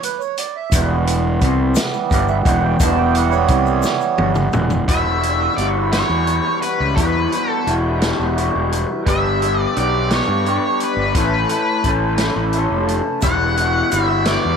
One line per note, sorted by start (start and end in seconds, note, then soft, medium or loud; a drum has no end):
0.03 0.21 B4 medium
0.03 closed hi-hat medium
0.03 shaker soft
0.19 0.38 C#5 medium
0.19 shaker soft
0.37 0.56 D5 medium
0.37 closed hi-hat medium
0.37 shaker soft
0.56 0.88 E5 medium
0.72 1.37 E1 loud
0.72 1.41 E2 loud
0.72 2.77 E3 medium
0.72 2.77 G3 medium
0.72 2.78 B3 medium
0.72 kick loud
0.72 closed hi-hat loud
0.72 shaker medium
1.07 closed hi-hat medium
1.41 1.74 C2 medium
1.41 1.76 C3 loud
1.41 kick loud
1.41 closed hi-hat medium
1.41 shaker soft
1.75 snare loud
1.75 closed hi-hat medium
1.75 shaker medium
1.93 shaker soft
2.11 2.43 G1 medium
2.11 2.45 G2 loud
2.11 2.28 D5 medium
2.11 kick loud
2.11 closed hi-hat medium
2.11 shaker soft
2.28 2.37 E5 medium
2.28 shaker soft
2.45 2.78 E1 loud
2.45 2.79 E2 medium
2.45 2.63 F#5 medium
2.45 kick loud
2.45 closed hi-hat medium
2.45 shaker soft
2.61 2.80 G5 loud
2.80 3.46 E1 loud
2.80 3.49 E2 loud
2.80 4.52 E3 medium
2.80 4.53 G3 medium
2.80 4.52 B3 medium
2.80 2.99 A5 loud
2.80 kick loud
2.80 closed hi-hat loud
2.80 shaker medium
2.97 3.15 G5 loud
3.15 3.34 F#5 medium
3.15 closed hi-hat medium
3.31 4.32 C#5 medium
3.31 shaker soft
3.48 3.82 C2 medium
3.48 3.83 C3 loud
3.48 kick loud
3.48 closed hi-hat medium
3.48 shaker soft
3.66 shaker soft
3.83 snare medium
3.83 shaker medium
4.01 shaker soft
4.18 4.51 G1 medium
4.18 4.53 G2 loud
4.18 high tom medium
4.35 mid tom medium
4.35 shaker soft
4.53 4.86 E1 loud
4.53 4.86 E2 loud
4.53 4.85 E3 medium
4.53 4.85 G3 soft
4.53 4.85 B3 medium
4.53 mid tom medium
4.53 shaker soft
4.70 floor tom medium
4.70 shaker soft
4.86 5.47 E1 medium
4.86 5.64 E2 medium
4.86 5.58 B2 medium
4.86 5.25 E3 medium
4.86 5.24 G3 medium
4.86 9.01 E4 medium
4.86 5.23 E4 loud
4.86 5.54 E5 loud
4.86 6.95 F#5 medium
4.86 kick loud
4.86 closed hi-hat medium
4.91 5.22 F#4 medium
5.23 5.57 E3 medium
5.23 5.58 G3 medium
5.23 5.60 E4 medium
5.23 5.60 F#4 medium
5.23 closed hi-hat medium
5.57 6.02 G1 medium
5.57 5.93 E3 medium
5.57 5.93 G3 medium
5.57 5.91 E4 medium
5.57 5.66 D5 medium
5.57 closed hi-hat medium
5.61 5.91 F#4 medium
5.92 6.64 E2 medium
5.92 6.63 B2 medium
5.92 6.25 E3 medium
5.92 6.27 G3 medium
5.92 6.27 E4 medium
5.92 6.28 F#4 medium
5.92 6.58 C#5 medium
5.92 snare medium
5.92 closed hi-hat medium
6.09 6.39 E2 medium
6.27 6.96 E3 medium
6.27 6.97 G3 medium
6.27 6.97 E4 medium
6.27 6.98 F#4 medium
6.27 closed hi-hat medium
6.62 6.95 B4 medium
6.62 closed hi-hat medium
6.80 6.95 C#2 medium
6.95 7.66 E2 medium
6.95 7.26 E2 medium
6.95 7.66 B2 medium
6.95 7.32 E3 medium
6.95 7.32 G3 medium
6.95 7.31 E4 medium
6.95 7.51 B4 medium
6.95 9.03 E5 medium
6.95 kick loud
6.95 closed hi-hat medium
6.99 7.29 F#4 medium
7.30 7.64 E3 soft
7.30 7.66 G3 medium
7.30 7.66 E4 medium
7.30 7.67 F#4 medium
7.30 closed hi-hat medium
7.51 7.71 A4 medium
7.65 8.11 E1 medium
7.65 8.00 E3 medium
7.65 8.00 G3 medium
7.65 7.99 E4 medium
7.65 7.98 F#4 medium
7.65 closed hi-hat medium
7.99 8.72 E2 medium
7.99 8.72 B2 medium
7.99 8.33 E3 medium
7.99 8.34 G3 medium
7.99 8.35 E4 medium
7.99 8.37 F#4 medium
7.99 snare loud
7.99 closed hi-hat medium
8.19 8.48 E1 medium
8.34 9.03 E3 medium
8.34 9.03 G3 medium
8.34 9.04 E4 medium
8.34 9.05 F#4 medium
8.34 closed hi-hat medium
8.55 8.84 E1 medium
8.72 closed hi-hat medium
9.04 9.65 G1 medium
9.04 9.74 G2 medium
9.04 9.75 D3 medium
9.04 9.41 G3 medium
9.04 9.41 B3 medium
9.04 9.40 D4 medium
9.04 11.13 D4 medium
9.04 9.38 G4 medium
9.04 11.13 B5 medium
9.04 kick loud
9.04 closed hi-hat medium
9.09 9.61 E5 loud
9.40 9.73 G3 medium
9.40 9.74 B3 medium
9.40 9.76 D4 medium
9.40 9.76 G4 medium
9.40 closed hi-hat medium
9.61 9.78 D5 loud
9.74 10.20 B1 medium
9.74 10.10 G3 medium
9.74 10.09 B3 medium
9.74 10.08 D4 medium
9.74 10.08 G4 medium
9.74 closed hi-hat medium
9.78 10.09 D5 medium
10.09 10.81 G2 medium
10.09 10.81 D3 medium
10.09 10.43 G3 medium
10.09 10.44 B3 medium
10.09 10.45 D4 medium
10.09 10.46 G4 medium
10.09 snare loud
10.09 closed hi-hat medium
10.14 10.84 C#5 medium
10.28 10.57 G2 medium
10.44 11.12 G3 medium
10.44 11.12 B3 medium
10.44 11.13 D4 medium
10.44 11.14 G4 medium
10.44 closed hi-hat medium
10.80 11.14 B4 medium
10.80 closed hi-hat medium
10.96 11.11 G1 medium
11.14 11.44 A1 medium
11.14 11.84 A2 medium
11.14 11.83 E3 medium
11.14 11.52 A3 medium
11.14 11.50 C#4 medium
11.14 13.22 E4 medium
11.14 11.48 A4 medium
11.14 11.89 B4 medium
11.14 13.22 C#5 medium
11.14 13.22 A5 medium
11.14 kick loud
11.14 closed hi-hat medium
11.49 11.83 A3 soft
11.49 11.84 C#4 medium
11.49 11.86 A4 medium
11.49 closed hi-hat medium
11.83 12.28 A1 medium
11.83 12.20 E3 medium
11.83 12.19 A3 medium
11.83 12.18 C#4 medium
11.83 12.16 A4 medium
11.83 kick medium
11.83 closed hi-hat medium
12.17 12.89 A2 medium
12.17 12.53 E3 medium
12.17 12.53 A3 medium
12.17 12.54 C#4 medium
12.17 12.55 A4 medium
12.17 snare loud
12.17 closed hi-hat medium
12.36 12.65 A1 medium
12.53 13.22 E3 medium
12.53 13.21 A3 medium
12.53 13.22 C#4 medium
12.53 13.22 A4 medium
12.53 closed hi-hat medium
12.70 12.99 F1 medium
12.88 closed hi-hat medium
13.21 13.81 E1 medium
13.21 13.99 E2 medium
13.21 13.92 B2 medium
13.21 13.59 E3 medium
13.21 13.59 G3 medium
13.21 14.57 E4 medium
13.21 13.58 E4 medium
13.21 13.56 F#4 loud
13.21 14.57 E5 medium
13.21 13.88 F#5 medium
13.21 14.57 B5 medium
13.21 kick loud
13.21 closed hi-hat medium
13.21 shaker medium
13.56 13.91 E3 medium
13.56 13.93 G3 medium
13.56 13.94 E4 medium
13.56 13.95 F#4 medium
13.56 closed hi-hat medium
13.56 shaker soft
13.91 14.36 G1 medium
13.91 14.28 E3 medium
13.91 14.28 G3 medium
13.91 14.27 E4 medium
13.91 14.27 E5 medium
13.91 closed hi-hat medium
13.91 shaker medium
13.96 14.26 F#4 medium
14.25 14.57 E3 medium
14.25 14.57 G3 medium
14.25 14.57 E4 medium
14.25 14.57 F#4 medium
14.25 14.57 D5 medium
14.25 snare loud
14.25 closed hi-hat medium
14.30 14.57 E2 medium
14.30 14.57 B2 medium
14.45 14.57 E2 medium